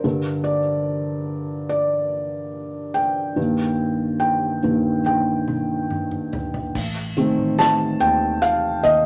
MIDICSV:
0, 0, Header, 1, 4, 480
1, 0, Start_track
1, 0, Key_signature, -2, "minor"
1, 0, Tempo, 837989
1, 22, Time_signature, 4, 2, 24, 8
1, 5188, End_track
2, 0, Start_track
2, 0, Title_t, "Felt piano"
2, 0, Program_c, 0, 0
2, 0, Control_c, 0, 64, 127
2, 0, Note_on_c, 0, 70, 57
2, 22, Note_on_c, 0, 43, 38
2, 22, Note_on_c, 0, 50, 31
2, 27, Note_on_c, 0, 69, 38
2, 29, Control_c, 0, 64, 0
2, 113, Control_c, 0, 64, 127
2, 233, Note_off_c, 0, 70, 0
2, 251, Note_on_c, 0, 74, 59
2, 339, Note_off_c, 0, 43, 0
2, 339, Note_off_c, 0, 50, 0
2, 342, Note_off_c, 0, 69, 0
2, 962, Note_off_c, 0, 74, 0
2, 970, Note_on_c, 0, 74, 67
2, 1685, Note_on_c, 0, 79, 67
2, 1710, Note_off_c, 0, 74, 0
2, 1925, Note_on_c, 0, 43, 38
2, 1927, Note_on_c, 0, 51, 35
2, 1931, Note_on_c, 0, 58, 36
2, 1938, Control_c, 0, 64, 0
2, 2034, Control_c, 0, 64, 127
2, 2396, Note_off_c, 0, 79, 0
2, 2404, Note_on_c, 0, 79, 66
2, 2626, Note_off_c, 0, 43, 0
2, 2627, Note_off_c, 0, 51, 0
2, 2629, Note_off_c, 0, 58, 0
2, 2652, Note_on_c, 0, 43, 35
2, 2655, Note_on_c, 0, 51, 33
2, 2657, Note_on_c, 0, 58, 36
2, 2868, Note_off_c, 0, 79, 0
2, 2872, Note_off_c, 0, 43, 0
2, 2873, Note_off_c, 0, 51, 0
2, 2874, Note_off_c, 0, 58, 0
2, 2899, Note_on_c, 0, 79, 62
2, 3604, Note_off_c, 0, 79, 0
2, 3874, Control_c, 0, 64, 0
2, 3960, Control_c, 0, 64, 127
2, 4105, Note_on_c, 0, 51, 44
2, 4111, Note_on_c, 0, 57, 41
2, 4113, Note_on_c, 0, 60, 49
2, 4346, Note_on_c, 0, 81, 75
2, 4423, Note_off_c, 0, 51, 0
2, 4426, Note_off_c, 0, 57, 0
2, 4427, Note_off_c, 0, 60, 0
2, 4585, Note_on_c, 0, 79, 76
2, 4591, Note_off_c, 0, 81, 0
2, 4822, Note_on_c, 0, 77, 79
2, 4831, Note_off_c, 0, 79, 0
2, 4876, Note_off_c, 0, 77, 0
2, 5060, Note_on_c, 0, 75, 85
2, 5188, Note_off_c, 0, 75, 0
2, 5188, End_track
3, 0, Start_track
3, 0, Title_t, "Picked electric bass"
3, 0, Program_c, 1, 34
3, 3868, Note_on_c, 1, 33, 84
3, 4203, Note_off_c, 1, 33, 0
3, 4226, Note_on_c, 1, 33, 74
3, 4561, Note_off_c, 1, 33, 0
3, 4587, Note_on_c, 1, 39, 72
3, 5040, Note_off_c, 1, 39, 0
3, 5061, Note_on_c, 1, 39, 75
3, 5188, Note_off_c, 1, 39, 0
3, 5188, End_track
4, 0, Start_track
4, 0, Title_t, "Drums"
4, 2891, Note_on_c, 9, 48, 44
4, 2949, Note_off_c, 9, 48, 0
4, 3137, Note_on_c, 9, 47, 51
4, 3194, Note_off_c, 9, 47, 0
4, 3382, Note_on_c, 9, 45, 52
4, 3439, Note_off_c, 9, 45, 0
4, 3502, Note_on_c, 9, 45, 53
4, 3559, Note_off_c, 9, 45, 0
4, 3626, Note_on_c, 9, 43, 70
4, 3683, Note_off_c, 9, 43, 0
4, 3747, Note_on_c, 9, 43, 68
4, 3804, Note_off_c, 9, 43, 0
4, 3868, Note_on_c, 9, 36, 92
4, 3870, Note_on_c, 9, 49, 72
4, 3925, Note_off_c, 9, 36, 0
4, 3927, Note_off_c, 9, 49, 0
4, 4106, Note_on_c, 9, 42, 64
4, 4163, Note_off_c, 9, 42, 0
4, 4344, Note_on_c, 9, 42, 77
4, 4353, Note_on_c, 9, 38, 91
4, 4401, Note_off_c, 9, 42, 0
4, 4410, Note_off_c, 9, 38, 0
4, 4583, Note_on_c, 9, 42, 45
4, 4640, Note_off_c, 9, 42, 0
4, 4822, Note_on_c, 9, 42, 81
4, 4879, Note_off_c, 9, 42, 0
4, 5062, Note_on_c, 9, 36, 70
4, 5064, Note_on_c, 9, 42, 67
4, 5119, Note_off_c, 9, 36, 0
4, 5121, Note_off_c, 9, 42, 0
4, 5188, End_track
0, 0, End_of_file